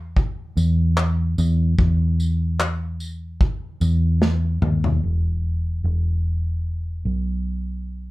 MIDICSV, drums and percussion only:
0, 0, Header, 1, 2, 480
1, 0, Start_track
1, 0, Tempo, 810811
1, 1058, Time_signature, 4, 2, 24, 8
1, 4801, End_track
2, 0, Start_track
2, 0, Title_t, "Drums"
2, 98, Note_on_c, 9, 36, 97
2, 157, Note_off_c, 9, 36, 0
2, 340, Note_on_c, 9, 54, 73
2, 399, Note_off_c, 9, 54, 0
2, 577, Note_on_c, 9, 39, 123
2, 636, Note_off_c, 9, 39, 0
2, 818, Note_on_c, 9, 54, 67
2, 877, Note_off_c, 9, 54, 0
2, 1057, Note_on_c, 9, 36, 120
2, 1116, Note_off_c, 9, 36, 0
2, 1301, Note_on_c, 9, 54, 68
2, 1360, Note_off_c, 9, 54, 0
2, 1540, Note_on_c, 9, 39, 103
2, 1599, Note_off_c, 9, 39, 0
2, 1777, Note_on_c, 9, 54, 61
2, 1836, Note_off_c, 9, 54, 0
2, 2017, Note_on_c, 9, 36, 107
2, 2076, Note_off_c, 9, 36, 0
2, 2257, Note_on_c, 9, 54, 75
2, 2316, Note_off_c, 9, 54, 0
2, 2496, Note_on_c, 9, 38, 65
2, 2555, Note_off_c, 9, 38, 0
2, 2736, Note_on_c, 9, 45, 88
2, 2795, Note_off_c, 9, 45, 0
2, 2866, Note_on_c, 9, 43, 96
2, 2925, Note_off_c, 9, 43, 0
2, 4801, End_track
0, 0, End_of_file